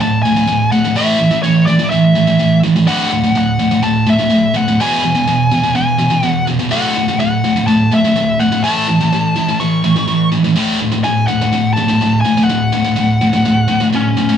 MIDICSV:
0, 0, Header, 1, 3, 480
1, 0, Start_track
1, 0, Tempo, 480000
1, 955, Time_signature, 4, 2, 24, 8
1, 14375, End_track
2, 0, Start_track
2, 0, Title_t, "Lead electric guitar"
2, 0, Program_c, 0, 29
2, 16, Note_on_c, 0, 81, 91
2, 221, Note_off_c, 0, 81, 0
2, 225, Note_on_c, 0, 80, 109
2, 676, Note_off_c, 0, 80, 0
2, 718, Note_on_c, 0, 78, 91
2, 940, Note_off_c, 0, 78, 0
2, 962, Note_on_c, 0, 76, 105
2, 1422, Note_off_c, 0, 76, 0
2, 1426, Note_on_c, 0, 73, 78
2, 1658, Note_off_c, 0, 73, 0
2, 1662, Note_on_c, 0, 74, 91
2, 1897, Note_off_c, 0, 74, 0
2, 1901, Note_on_c, 0, 76, 79
2, 2586, Note_off_c, 0, 76, 0
2, 2877, Note_on_c, 0, 78, 91
2, 3365, Note_off_c, 0, 78, 0
2, 3377, Note_on_c, 0, 78, 90
2, 3832, Note_off_c, 0, 78, 0
2, 3836, Note_on_c, 0, 81, 94
2, 4056, Note_off_c, 0, 81, 0
2, 4097, Note_on_c, 0, 76, 96
2, 4563, Note_on_c, 0, 78, 101
2, 4577, Note_off_c, 0, 76, 0
2, 4780, Note_off_c, 0, 78, 0
2, 4809, Note_on_c, 0, 80, 111
2, 5750, Note_off_c, 0, 80, 0
2, 5762, Note_on_c, 0, 80, 86
2, 6262, Note_off_c, 0, 80, 0
2, 6262, Note_on_c, 0, 78, 86
2, 6435, Note_off_c, 0, 78, 0
2, 6716, Note_on_c, 0, 78, 79
2, 7190, Note_off_c, 0, 78, 0
2, 7202, Note_on_c, 0, 78, 80
2, 7665, Note_off_c, 0, 78, 0
2, 7669, Note_on_c, 0, 81, 94
2, 7893, Note_off_c, 0, 81, 0
2, 7939, Note_on_c, 0, 76, 97
2, 8395, Note_on_c, 0, 78, 85
2, 8419, Note_off_c, 0, 76, 0
2, 8633, Note_off_c, 0, 78, 0
2, 8637, Note_on_c, 0, 81, 104
2, 9599, Note_on_c, 0, 85, 92
2, 9624, Note_off_c, 0, 81, 0
2, 10277, Note_off_c, 0, 85, 0
2, 11040, Note_on_c, 0, 80, 91
2, 11267, Note_off_c, 0, 80, 0
2, 11271, Note_on_c, 0, 78, 88
2, 11720, Note_off_c, 0, 78, 0
2, 11735, Note_on_c, 0, 81, 115
2, 12191, Note_off_c, 0, 81, 0
2, 12210, Note_on_c, 0, 80, 101
2, 12438, Note_off_c, 0, 80, 0
2, 12442, Note_on_c, 0, 78, 89
2, 13860, Note_off_c, 0, 78, 0
2, 13952, Note_on_c, 0, 61, 79
2, 14375, Note_off_c, 0, 61, 0
2, 14375, End_track
3, 0, Start_track
3, 0, Title_t, "Distorted electric guitar"
3, 0, Program_c, 1, 30
3, 3, Note_on_c, 1, 45, 93
3, 5, Note_on_c, 1, 38, 79
3, 216, Note_off_c, 1, 45, 0
3, 217, Note_off_c, 1, 38, 0
3, 252, Note_on_c, 1, 45, 75
3, 253, Note_on_c, 1, 38, 66
3, 352, Note_off_c, 1, 45, 0
3, 354, Note_off_c, 1, 38, 0
3, 364, Note_on_c, 1, 45, 96
3, 366, Note_on_c, 1, 38, 75
3, 463, Note_off_c, 1, 38, 0
3, 469, Note_off_c, 1, 45, 0
3, 475, Note_on_c, 1, 38, 86
3, 481, Note_on_c, 1, 45, 90
3, 691, Note_off_c, 1, 38, 0
3, 694, Note_off_c, 1, 45, 0
3, 719, Note_on_c, 1, 38, 76
3, 719, Note_on_c, 1, 45, 85
3, 834, Note_off_c, 1, 45, 0
3, 837, Note_off_c, 1, 38, 0
3, 846, Note_on_c, 1, 45, 78
3, 849, Note_on_c, 1, 38, 78
3, 945, Note_off_c, 1, 45, 0
3, 953, Note_off_c, 1, 38, 0
3, 957, Note_on_c, 1, 45, 94
3, 963, Note_on_c, 1, 52, 103
3, 967, Note_on_c, 1, 57, 104
3, 1175, Note_off_c, 1, 52, 0
3, 1181, Note_off_c, 1, 45, 0
3, 1186, Note_off_c, 1, 57, 0
3, 1187, Note_on_c, 1, 52, 94
3, 1192, Note_on_c, 1, 45, 72
3, 1299, Note_off_c, 1, 52, 0
3, 1302, Note_off_c, 1, 45, 0
3, 1311, Note_on_c, 1, 52, 76
3, 1314, Note_on_c, 1, 45, 61
3, 1430, Note_off_c, 1, 45, 0
3, 1432, Note_off_c, 1, 52, 0
3, 1442, Note_on_c, 1, 45, 82
3, 1446, Note_on_c, 1, 52, 105
3, 1653, Note_off_c, 1, 45, 0
3, 1655, Note_off_c, 1, 52, 0
3, 1677, Note_on_c, 1, 52, 90
3, 1682, Note_on_c, 1, 45, 72
3, 1781, Note_off_c, 1, 52, 0
3, 1782, Note_off_c, 1, 45, 0
3, 1793, Note_on_c, 1, 52, 94
3, 1794, Note_on_c, 1, 45, 60
3, 1904, Note_off_c, 1, 45, 0
3, 1907, Note_off_c, 1, 52, 0
3, 1916, Note_on_c, 1, 45, 77
3, 1919, Note_on_c, 1, 52, 81
3, 2130, Note_off_c, 1, 45, 0
3, 2132, Note_off_c, 1, 52, 0
3, 2154, Note_on_c, 1, 52, 77
3, 2155, Note_on_c, 1, 45, 67
3, 2261, Note_off_c, 1, 52, 0
3, 2262, Note_off_c, 1, 45, 0
3, 2273, Note_on_c, 1, 52, 88
3, 2274, Note_on_c, 1, 45, 76
3, 2384, Note_off_c, 1, 45, 0
3, 2389, Note_off_c, 1, 52, 0
3, 2396, Note_on_c, 1, 45, 86
3, 2401, Note_on_c, 1, 52, 83
3, 2610, Note_off_c, 1, 45, 0
3, 2612, Note_off_c, 1, 52, 0
3, 2634, Note_on_c, 1, 52, 88
3, 2635, Note_on_c, 1, 45, 71
3, 2747, Note_off_c, 1, 52, 0
3, 2748, Note_off_c, 1, 45, 0
3, 2759, Note_on_c, 1, 52, 99
3, 2760, Note_on_c, 1, 45, 80
3, 2865, Note_off_c, 1, 45, 0
3, 2871, Note_on_c, 1, 38, 108
3, 2873, Note_off_c, 1, 52, 0
3, 2877, Note_on_c, 1, 45, 95
3, 2888, Note_on_c, 1, 50, 107
3, 3096, Note_off_c, 1, 38, 0
3, 3099, Note_off_c, 1, 45, 0
3, 3105, Note_off_c, 1, 50, 0
3, 3117, Note_on_c, 1, 45, 78
3, 3119, Note_on_c, 1, 38, 66
3, 3222, Note_off_c, 1, 45, 0
3, 3227, Note_off_c, 1, 38, 0
3, 3234, Note_on_c, 1, 45, 86
3, 3239, Note_on_c, 1, 38, 70
3, 3339, Note_off_c, 1, 38, 0
3, 3343, Note_off_c, 1, 45, 0
3, 3351, Note_on_c, 1, 38, 90
3, 3355, Note_on_c, 1, 45, 85
3, 3566, Note_off_c, 1, 38, 0
3, 3568, Note_off_c, 1, 45, 0
3, 3592, Note_on_c, 1, 45, 85
3, 3597, Note_on_c, 1, 38, 69
3, 3698, Note_off_c, 1, 45, 0
3, 3704, Note_off_c, 1, 38, 0
3, 3710, Note_on_c, 1, 45, 89
3, 3716, Note_on_c, 1, 38, 67
3, 3814, Note_off_c, 1, 38, 0
3, 3818, Note_off_c, 1, 45, 0
3, 3826, Note_on_c, 1, 38, 77
3, 3830, Note_on_c, 1, 45, 97
3, 4043, Note_off_c, 1, 38, 0
3, 4045, Note_off_c, 1, 45, 0
3, 4066, Note_on_c, 1, 38, 67
3, 4066, Note_on_c, 1, 45, 86
3, 4178, Note_off_c, 1, 45, 0
3, 4180, Note_off_c, 1, 38, 0
3, 4190, Note_on_c, 1, 45, 86
3, 4191, Note_on_c, 1, 38, 74
3, 4291, Note_off_c, 1, 38, 0
3, 4295, Note_off_c, 1, 45, 0
3, 4303, Note_on_c, 1, 38, 76
3, 4307, Note_on_c, 1, 45, 94
3, 4522, Note_off_c, 1, 38, 0
3, 4524, Note_off_c, 1, 45, 0
3, 4545, Note_on_c, 1, 45, 83
3, 4552, Note_on_c, 1, 38, 69
3, 4667, Note_off_c, 1, 45, 0
3, 4671, Note_off_c, 1, 38, 0
3, 4680, Note_on_c, 1, 45, 78
3, 4688, Note_on_c, 1, 38, 64
3, 4794, Note_off_c, 1, 45, 0
3, 4796, Note_off_c, 1, 38, 0
3, 4800, Note_on_c, 1, 40, 98
3, 4807, Note_on_c, 1, 47, 111
3, 4813, Note_on_c, 1, 52, 97
3, 5020, Note_off_c, 1, 40, 0
3, 5023, Note_off_c, 1, 47, 0
3, 5026, Note_off_c, 1, 52, 0
3, 5036, Note_on_c, 1, 47, 92
3, 5042, Note_on_c, 1, 40, 78
3, 5135, Note_off_c, 1, 47, 0
3, 5143, Note_off_c, 1, 40, 0
3, 5147, Note_on_c, 1, 47, 71
3, 5155, Note_on_c, 1, 40, 63
3, 5262, Note_off_c, 1, 40, 0
3, 5268, Note_off_c, 1, 47, 0
3, 5274, Note_on_c, 1, 40, 81
3, 5281, Note_on_c, 1, 47, 100
3, 5487, Note_off_c, 1, 40, 0
3, 5491, Note_off_c, 1, 47, 0
3, 5514, Note_on_c, 1, 47, 85
3, 5515, Note_on_c, 1, 40, 72
3, 5621, Note_off_c, 1, 47, 0
3, 5625, Note_off_c, 1, 40, 0
3, 5633, Note_on_c, 1, 47, 76
3, 5637, Note_on_c, 1, 40, 69
3, 5735, Note_off_c, 1, 40, 0
3, 5735, Note_off_c, 1, 47, 0
3, 5747, Note_on_c, 1, 40, 75
3, 5747, Note_on_c, 1, 47, 84
3, 5964, Note_off_c, 1, 40, 0
3, 5964, Note_off_c, 1, 47, 0
3, 5985, Note_on_c, 1, 47, 83
3, 5991, Note_on_c, 1, 40, 73
3, 6089, Note_off_c, 1, 47, 0
3, 6096, Note_off_c, 1, 40, 0
3, 6101, Note_on_c, 1, 47, 98
3, 6108, Note_on_c, 1, 40, 69
3, 6215, Note_off_c, 1, 40, 0
3, 6222, Note_off_c, 1, 47, 0
3, 6227, Note_on_c, 1, 40, 80
3, 6234, Note_on_c, 1, 47, 84
3, 6444, Note_off_c, 1, 40, 0
3, 6448, Note_off_c, 1, 47, 0
3, 6471, Note_on_c, 1, 47, 84
3, 6478, Note_on_c, 1, 40, 68
3, 6578, Note_off_c, 1, 47, 0
3, 6582, Note_off_c, 1, 40, 0
3, 6590, Note_on_c, 1, 47, 84
3, 6594, Note_on_c, 1, 40, 59
3, 6704, Note_off_c, 1, 40, 0
3, 6708, Note_on_c, 1, 38, 90
3, 6710, Note_off_c, 1, 47, 0
3, 6716, Note_on_c, 1, 45, 97
3, 6724, Note_on_c, 1, 50, 107
3, 6934, Note_off_c, 1, 38, 0
3, 6938, Note_off_c, 1, 45, 0
3, 6942, Note_off_c, 1, 50, 0
3, 6963, Note_on_c, 1, 45, 76
3, 6965, Note_on_c, 1, 38, 64
3, 7068, Note_off_c, 1, 45, 0
3, 7071, Note_off_c, 1, 38, 0
3, 7080, Note_on_c, 1, 45, 81
3, 7083, Note_on_c, 1, 38, 69
3, 7183, Note_off_c, 1, 38, 0
3, 7189, Note_off_c, 1, 45, 0
3, 7195, Note_on_c, 1, 38, 89
3, 7201, Note_on_c, 1, 45, 82
3, 7408, Note_off_c, 1, 38, 0
3, 7411, Note_off_c, 1, 45, 0
3, 7441, Note_on_c, 1, 45, 80
3, 7446, Note_on_c, 1, 38, 63
3, 7547, Note_off_c, 1, 45, 0
3, 7550, Note_off_c, 1, 38, 0
3, 7559, Note_on_c, 1, 45, 83
3, 7562, Note_on_c, 1, 38, 60
3, 7665, Note_off_c, 1, 38, 0
3, 7674, Note_off_c, 1, 45, 0
3, 7677, Note_on_c, 1, 38, 85
3, 7686, Note_on_c, 1, 45, 78
3, 7890, Note_off_c, 1, 38, 0
3, 7894, Note_off_c, 1, 45, 0
3, 7921, Note_on_c, 1, 38, 60
3, 7921, Note_on_c, 1, 45, 70
3, 8036, Note_off_c, 1, 38, 0
3, 8036, Note_off_c, 1, 45, 0
3, 8049, Note_on_c, 1, 45, 88
3, 8050, Note_on_c, 1, 38, 69
3, 8149, Note_off_c, 1, 38, 0
3, 8151, Note_off_c, 1, 45, 0
3, 8162, Note_on_c, 1, 38, 84
3, 8164, Note_on_c, 1, 45, 85
3, 8372, Note_off_c, 1, 38, 0
3, 8373, Note_off_c, 1, 45, 0
3, 8403, Note_on_c, 1, 45, 88
3, 8407, Note_on_c, 1, 38, 70
3, 8509, Note_off_c, 1, 45, 0
3, 8512, Note_off_c, 1, 38, 0
3, 8521, Note_on_c, 1, 45, 83
3, 8524, Note_on_c, 1, 38, 71
3, 8626, Note_off_c, 1, 45, 0
3, 8634, Note_off_c, 1, 38, 0
3, 8638, Note_on_c, 1, 45, 89
3, 8650, Note_on_c, 1, 52, 98
3, 8655, Note_on_c, 1, 57, 113
3, 8860, Note_off_c, 1, 45, 0
3, 8867, Note_off_c, 1, 52, 0
3, 8869, Note_off_c, 1, 57, 0
3, 8877, Note_on_c, 1, 52, 82
3, 8884, Note_on_c, 1, 45, 64
3, 8995, Note_off_c, 1, 52, 0
3, 8998, Note_off_c, 1, 45, 0
3, 9006, Note_on_c, 1, 52, 85
3, 9009, Note_on_c, 1, 45, 69
3, 9112, Note_off_c, 1, 45, 0
3, 9115, Note_off_c, 1, 52, 0
3, 9124, Note_on_c, 1, 45, 87
3, 9126, Note_on_c, 1, 52, 80
3, 9334, Note_off_c, 1, 45, 0
3, 9336, Note_off_c, 1, 52, 0
3, 9356, Note_on_c, 1, 52, 92
3, 9359, Note_on_c, 1, 45, 67
3, 9471, Note_off_c, 1, 52, 0
3, 9473, Note_off_c, 1, 45, 0
3, 9483, Note_on_c, 1, 52, 84
3, 9485, Note_on_c, 1, 45, 54
3, 9588, Note_off_c, 1, 45, 0
3, 9593, Note_off_c, 1, 52, 0
3, 9600, Note_on_c, 1, 45, 78
3, 9605, Note_on_c, 1, 52, 90
3, 9813, Note_off_c, 1, 45, 0
3, 9815, Note_off_c, 1, 52, 0
3, 9840, Note_on_c, 1, 52, 78
3, 9844, Note_on_c, 1, 45, 70
3, 9948, Note_off_c, 1, 52, 0
3, 9954, Note_off_c, 1, 45, 0
3, 9960, Note_on_c, 1, 52, 88
3, 9966, Note_on_c, 1, 45, 75
3, 10064, Note_off_c, 1, 45, 0
3, 10064, Note_off_c, 1, 52, 0
3, 10076, Note_on_c, 1, 45, 79
3, 10076, Note_on_c, 1, 52, 86
3, 10291, Note_off_c, 1, 45, 0
3, 10291, Note_off_c, 1, 52, 0
3, 10318, Note_on_c, 1, 52, 85
3, 10320, Note_on_c, 1, 45, 65
3, 10431, Note_off_c, 1, 45, 0
3, 10431, Note_off_c, 1, 52, 0
3, 10443, Note_on_c, 1, 45, 78
3, 10443, Note_on_c, 1, 52, 79
3, 10549, Note_off_c, 1, 45, 0
3, 10556, Note_on_c, 1, 38, 99
3, 10557, Note_off_c, 1, 52, 0
3, 10561, Note_on_c, 1, 45, 109
3, 10568, Note_on_c, 1, 50, 108
3, 10781, Note_off_c, 1, 38, 0
3, 10783, Note_off_c, 1, 45, 0
3, 10787, Note_off_c, 1, 50, 0
3, 10800, Note_on_c, 1, 45, 83
3, 10808, Note_on_c, 1, 38, 72
3, 10908, Note_off_c, 1, 45, 0
3, 10914, Note_off_c, 1, 38, 0
3, 10920, Note_on_c, 1, 45, 86
3, 10926, Note_on_c, 1, 38, 75
3, 11029, Note_off_c, 1, 38, 0
3, 11031, Note_off_c, 1, 45, 0
3, 11041, Note_on_c, 1, 38, 72
3, 11043, Note_on_c, 1, 45, 103
3, 11254, Note_off_c, 1, 38, 0
3, 11255, Note_off_c, 1, 45, 0
3, 11281, Note_on_c, 1, 45, 94
3, 11289, Note_on_c, 1, 38, 64
3, 11398, Note_off_c, 1, 45, 0
3, 11402, Note_off_c, 1, 38, 0
3, 11414, Note_on_c, 1, 38, 60
3, 11416, Note_on_c, 1, 45, 78
3, 11517, Note_off_c, 1, 38, 0
3, 11523, Note_off_c, 1, 45, 0
3, 11529, Note_on_c, 1, 38, 76
3, 11535, Note_on_c, 1, 45, 95
3, 11738, Note_off_c, 1, 38, 0
3, 11741, Note_off_c, 1, 45, 0
3, 11770, Note_on_c, 1, 45, 81
3, 11772, Note_on_c, 1, 38, 60
3, 11880, Note_off_c, 1, 45, 0
3, 11884, Note_off_c, 1, 38, 0
3, 11892, Note_on_c, 1, 45, 97
3, 11899, Note_on_c, 1, 38, 70
3, 12004, Note_off_c, 1, 45, 0
3, 12007, Note_off_c, 1, 38, 0
3, 12018, Note_on_c, 1, 38, 75
3, 12021, Note_on_c, 1, 45, 80
3, 12223, Note_off_c, 1, 38, 0
3, 12224, Note_off_c, 1, 45, 0
3, 12251, Note_on_c, 1, 45, 84
3, 12252, Note_on_c, 1, 38, 69
3, 12364, Note_off_c, 1, 38, 0
3, 12364, Note_off_c, 1, 45, 0
3, 12374, Note_on_c, 1, 45, 91
3, 12379, Note_on_c, 1, 38, 77
3, 12484, Note_off_c, 1, 38, 0
3, 12485, Note_off_c, 1, 45, 0
3, 12496, Note_on_c, 1, 38, 81
3, 12498, Note_on_c, 1, 45, 90
3, 12702, Note_off_c, 1, 38, 0
3, 12703, Note_off_c, 1, 45, 0
3, 12725, Note_on_c, 1, 45, 95
3, 12733, Note_on_c, 1, 38, 71
3, 12834, Note_off_c, 1, 45, 0
3, 12836, Note_off_c, 1, 38, 0
3, 12846, Note_on_c, 1, 45, 87
3, 12848, Note_on_c, 1, 38, 71
3, 12949, Note_off_c, 1, 38, 0
3, 12956, Note_off_c, 1, 45, 0
3, 12961, Note_on_c, 1, 38, 88
3, 12968, Note_on_c, 1, 45, 95
3, 13175, Note_off_c, 1, 38, 0
3, 13178, Note_off_c, 1, 45, 0
3, 13211, Note_on_c, 1, 45, 73
3, 13217, Note_on_c, 1, 38, 68
3, 13320, Note_off_c, 1, 45, 0
3, 13321, Note_off_c, 1, 38, 0
3, 13332, Note_on_c, 1, 45, 79
3, 13333, Note_on_c, 1, 38, 65
3, 13441, Note_off_c, 1, 38, 0
3, 13444, Note_off_c, 1, 45, 0
3, 13453, Note_on_c, 1, 38, 78
3, 13461, Note_on_c, 1, 45, 86
3, 13661, Note_off_c, 1, 38, 0
3, 13665, Note_off_c, 1, 45, 0
3, 13681, Note_on_c, 1, 45, 92
3, 13689, Note_on_c, 1, 38, 74
3, 13795, Note_off_c, 1, 45, 0
3, 13796, Note_off_c, 1, 38, 0
3, 13806, Note_on_c, 1, 45, 93
3, 13808, Note_on_c, 1, 38, 70
3, 13922, Note_off_c, 1, 38, 0
3, 13922, Note_off_c, 1, 45, 0
3, 13932, Note_on_c, 1, 38, 79
3, 13933, Note_on_c, 1, 45, 84
3, 14140, Note_off_c, 1, 38, 0
3, 14141, Note_off_c, 1, 45, 0
3, 14172, Note_on_c, 1, 45, 95
3, 14179, Note_on_c, 1, 38, 64
3, 14279, Note_off_c, 1, 45, 0
3, 14288, Note_off_c, 1, 38, 0
3, 14291, Note_on_c, 1, 45, 78
3, 14300, Note_on_c, 1, 38, 76
3, 14375, Note_off_c, 1, 38, 0
3, 14375, Note_off_c, 1, 45, 0
3, 14375, End_track
0, 0, End_of_file